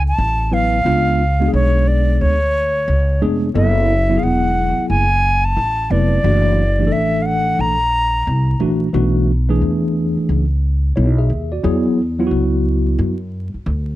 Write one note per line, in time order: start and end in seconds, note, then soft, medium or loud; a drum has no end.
0.00 0.14 C#2 medium
0.08 0.55 A5 loud
0.18 0.82 A1 medium
0.51 0.78 F#3 medium
0.51 0.78 B3 medium
0.51 0.78 E4 medium
0.51 0.79 B4 medium
0.51 1.53 F5 medium
0.85 1.49 C#2 loud
0.85 1.21 G#3 medium
0.85 1.22 B3 medium
0.85 1.22 D4 medium
0.85 1.22 F4 medium
1.40 2.35 G#3 medium
1.40 2.35 B3 medium
1.40 2.35 D4 medium
1.40 1.46 F#4 medium
1.48 2.39 G#4 medium
1.53 2.17 B1 medium
1.53 1.89 C#5 medium
1.88 2.23 D5 medium
2.21 2.85 D2 medium
2.21 3.22 C#5 medium
2.88 3.19 C#2 loud
3.21 3.54 F1 medium
3.21 3.48 G#3 medium
3.21 3.48 B3 medium
3.21 3.48 D4 medium
3.21 3.48 G#4 loud
3.54 4.19 F#1 loud
3.54 3.91 F#3 medium
3.54 3.91 B3 medium
3.54 3.91 E4 medium
3.54 3.92 A4 medium
3.54 4.21 E5 medium
4.09 5.04 F#3 medium
4.09 5.04 B3 medium
4.09 5.05 E4 medium
4.09 4.15 F#4 medium
4.17 5.08 G#4 medium
4.17 4.25 F5 medium
4.23 4.75 E1 medium
4.23 4.89 F#5 medium
4.78 muted upright bass stroke soft
4.89 5.54 F#1 medium
4.89 5.46 G#5 medium
5.45 5.92 A5 loud
5.57 5.89 A1 medium
5.90 6.23 F1 medium
5.90 6.18 F#3 medium
5.90 6.18 B3 medium
5.90 6.18 E4 medium
5.90 6.18 B4 medium
5.90 6.94 D5 medium
6.23 6.88 F#1 loud
6.23 6.61 E3 medium
6.23 6.61 A3 medium
6.23 6.61 D4 medium
6.23 6.61 F#4 medium
6.79 7.74 E3 medium
6.79 7.74 A3 medium
6.79 7.74 D4 medium
6.79 6.85 G4 medium
6.87 7.78 A4 medium
6.92 7.56 A1 medium
6.92 7.24 E5 medium
7.22 7.27 F5 medium
7.22 7.62 F#5 loud
7.59 8.23 A#1 medium
7.59 8.61 A#5 loud
8.27 8.59 C2 medium
8.60 8.92 A#1 medium
8.60 8.87 E3 medium
8.60 8.87 A3 medium
8.60 8.87 D4 medium
8.60 8.88 F#4 medium
8.93 9.58 B1 medium
8.93 9.30 E3 medium
8.93 9.30 A3 medium
8.93 9.31 D4 medium
8.93 9.31 F#4 loud
9.49 10.44 E3 medium
9.49 10.44 A3 medium
9.49 10.44 D4 medium
9.49 10.44 G#4 medium
9.61 10.14 E2 medium
10.17 muted upright bass stroke soft
10.29 10.93 C#2 medium
10.96 11.29 B1 medium
10.96 11.17 E4 medium
10.96 11.17 C#5 medium
11.18 11.50 G#4 medium
11.18 11.50 E5 medium
11.30 11.62 D#2 medium
11.52 11.84 F#4 medium
11.52 11.84 D5 medium
11.63 12.28 E2 loud
11.63 12.00 F#3 medium
11.63 12.00 B3 medium
11.63 12.00 E4 medium
11.63 12.01 G#4 loud
12.19 13.14 F#3 medium
12.19 13.14 B3 medium
12.19 13.14 E4 medium
12.19 12.24 F4 medium
12.27 13.17 F#4 loud
12.31 12.95 C#2 medium
12.99 13.51 F#2 medium
13.54 muted upright bass stroke soft
13.66 13.96 D2 loud